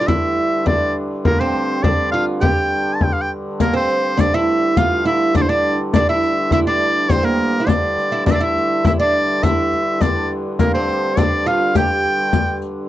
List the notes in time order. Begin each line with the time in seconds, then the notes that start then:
Already playing: G2 D3
0.01 F4
0.07 E4 E5, frame drum
0.37 frame drum
0.66 D4 D5, frame drum
1.25 A#3 A#4, frame drum
1.40 C4 C5
1.55 frame drum
1.83 D4 D5, frame drum
2.11 F4 F5
2.41 G4 G5, frame drum
2.95 A5
3.01 G5, frame drum
3.13 F5
3.21 G5
3.58 G2 D3 A#3 A#4, riq, frame drum
3.74 C4 C5
3.89 riq, frame drum
4.17 D4 D5, riq, frame drum
4.34 E4 E5
4.77 F4 F5, riq, frame drum
5.05 E4 E5, riq, frame drum
5.34 D4 D5, riq, frame drum
5.42 C5
5.49 D4 D5
5.94 D4 D5, riq, frame drum
6.09 E4 E5
6.22 riq, frame drum
6.51 E4 E5, riq, frame drum
6.67 D4 D5
7.09 C4 C5, riq, frame drum
7.23 A#3 A#4
7.39 riq, frame drum
7.60 E4
7.67 D4 D5, riq, frame drum
7.98 riq, frame drum
8.12 E4
8.26 G2 D3 D4 D5, riq, frame drum
8.31 D4 D5 E5
8.41 E4 E5
8.56 riq, frame drum
8.85 E4 E5, riq, frame drum
9.00 D4 D5
9.43 E4 E5, riq, frame drum
9.72 riq, frame drum
10.01 D4 D5, riq, frame drum
10.59 A#3 A#4, riq, frame drum
10.74 C4 C5
10.89 riq, frame drum
11.17 D4 D5, riq, frame drum
11.46 F4 F5
11.75 G4 G5, riq, frame drum
12.04 frame drum
12.33 riq, frame drum
12.62 riq